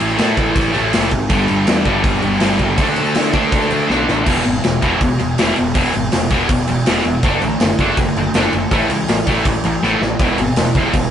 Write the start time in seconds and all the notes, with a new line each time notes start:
Already playing: A2 E3 A3
0.00 A1, crash
0.17 A2 E3 A3, snare, crash
0.37 A1, kick, crash
0.55 A1, kick, crash
0.72 A1 A2 E3 A3, crash
0.93 F#1, snare, crash
1.11 G#1, kick, crash
1.30 G1 G2 D3 G3, kick, crash
1.48 G1, crash
1.67 E2, snare, crash
1.85 G1 G2 D3 G3, kick, crash
2.04 G1, kick, crash
2.22 G1, crash
2.39 G1 G2 D3 G3, snare, crash
2.59 G1, kick, crash
2.77 D2 D3 A3 D4, kick, crash
2.96 D2, crash
3.15 D3, snare, crash
3.33 D2 D3 A3 D4, kick, crash
3.52 D2, kick, crash
3.71 D2, crash
3.88 B1 D3 A3 D4, snare
4.08 A1, snare
4.25 E1 E2 B2 E3, kick, crash
4.44 G#1 E2 B2, crash
4.64 E1 E2 B2, snare, crash
4.81 E1 E2 B2 E3, kick, crash
5.00 E1 E2 B2, kick, crash
5.19 E1 E2 B2, crash
5.38 E1 E2 B2 E3, snare, crash
5.56 E1 E2 B2, crash
5.74 E1 E2 B2 E3, kick, crash
5.93 G#1 E2 B2, crash
6.12 E1 E2 B2, snare, crash
6.30 E1 E2 B2 E3, kick, crash
6.49 E1 E2 B2, kick, crash
6.68 E1 E2 B2, crash
6.86 E1 E2 B2 E3, snare, crash
7.05 E1 E2 B2, crash
7.23 F#1 D3 A3 D4, kick, crash
7.42 A1 D3 A3, crash
7.60 F#1 D3 A3, snare, crash
7.79 F#1 D3 A3 D4, kick, crash
7.97 F#1 D3 A3, kick, crash
8.16 F#1 D3 A3, crash
8.34 F#1 D3 A3 D4, snare, crash
8.53 F#1 D3 A3, crash
8.71 A1 A2 E3 A3, kick, crash
8.89 C#2 A2 E3, crash
9.08 A1 A2 E3, snare, crash
9.27 A1 A2 E3 A3, kick, crash
9.45 A1 A2 E3, kick, crash
9.64 A1 A2 E3, crash
9.83 A1 A2 E3 A3, snare
10.01 A1 A2 E3, snare
10.19 E1 E2 B2 E3, kick, crash
10.38 G#1 E2 B2, crash
10.56 E1 E2 B2, snare, crash
10.75 E1 E2 B2 E3, kick, crash
10.94 E1 E2 B2, kick, crash